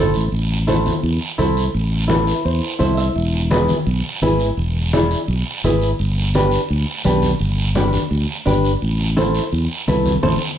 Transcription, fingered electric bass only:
Already playing: G1
0.15 A1
0.32 A1
1.03 E2
1.39 C2
1.74 A1
2.45 E2
2.80 C2
3.16 E1
3.87 B1
4.21 G#1
4.57 E1
5.28 B1
5.64 G#1
5.99 G1
6.70 D2
7.05 B1
7.40 G1
8.11 D2
8.46 G1
8.82 A1
9.52 E2
9.88 C2
10.23 A1

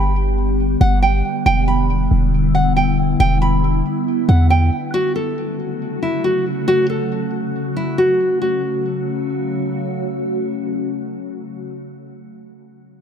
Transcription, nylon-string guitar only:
Already playing: B5
0.81 F#5
1.02 G5
1.46 G5
1.68 B5
2.55 F#5
2.77 G5
3.20 G5
3.42 B5
4.29 F#5
4.50 G5
4.94 F#4
5.16 A4
6.03 E4
6.24 F#4
6.68 F#4
6.90 A4
7.77 E4
7.98 F#4
8.42 F#4

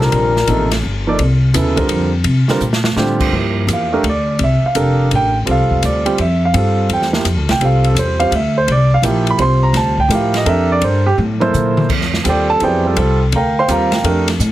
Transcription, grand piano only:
Already playing: D3 G3 C4 F4 A#4
0.48 C3 F3 A#3 D#4 A4
1.07 F3 A#3 D#4 A4 D5
1.54 C#3 F#3 B3 E4 A4
1.76 D3 G3 C4 F4 A#4
2.48 D3 G3 C4 F4 A#4
2.96 D3 G3 C4 F4 G4
3.33 F3 A#3 E4 G4
3.73 F5
3.92 A3 D4 G4 A#4
4.09 D5
4.44 E5
4.66 F5
4.75 D4 G4 A4 A#4
5.15 G5
5.45 G3 C4 F4 A4
5.51 F5
5.85 D5
6.05 G3 C4 F4 G4
6.21 E5
6.45 F5
6.53 G3 C4 F4 A4
6.93 G5
7.13 F3 A#3 E4 G4
7.51 G5
7.61 G3 C4 F4 A4 F5
7.87 A4
7.99 C5
8.20 G3 C4 F4 C5 F5
8.35 E5
8.58 C5
8.72 D5
8.94 F5
9.03 F3 A#3 E4 G4
9.31 B5
9.38 G3 C4 F4 C5 C6
9.63 A#5
9.77 A5
10.00 G5
10.10 F3 E4 G4 A#4
10.15 F5
10.36 D#5
10.46 D4 G4 A4 A#4 E5
10.72 D5
10.84 C5
11.06 G4
11.40 A#3 E4 A4 C5
12.24 G3 C4 F4 A4
12.28 G4 C5 D5 G5
12.50 A4 A5
12.62 F#3 B3 E4 G4 G#4 C5 D5 G5
12.85 G3 C4 F4 A4
12.96 G3 C4 F4 A4
13.36 A#4 F5 G5 A#5
13.59 C5 F5 G5 C6
13.68 G3 C4 F4 G4 G5 A#5
13.72 A#4 F5
14.04 A3 D4 G4 A#4

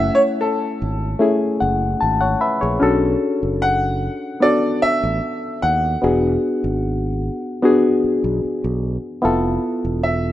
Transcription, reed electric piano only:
Already playing: A3 C#4 E4 G#5
1.19 A3 C#4 E4 G#4
1.60 F#5
2.01 A5
2.21 C#5 F#5
2.41 B4 E5 B5
2.61 G#4 C#5
2.80 C#4 D4 F#4 A4
4.40 B3 D4 F#4 A4
6.02 B3 D4 F#4 G#4
7.62 B3 D4 F#4 G#4
9.22 B3 E4 F4 A4

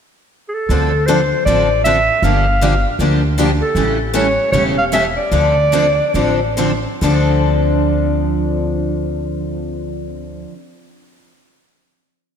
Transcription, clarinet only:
0.49 G#4
0.54 A4
1.06 C5
1.45 D5
1.84 E5
2.24 F5
3.62 A4
4.17 C#5
4.52 C#5
4.78 F5
4.93 E5
5.17 D5

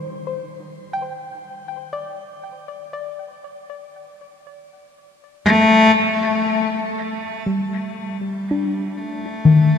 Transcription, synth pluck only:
Already playing: D#3 C5
0.93 G5
1.93 D5
2.93 D5
7.46 G3
8.51 D4
9.45 D#3

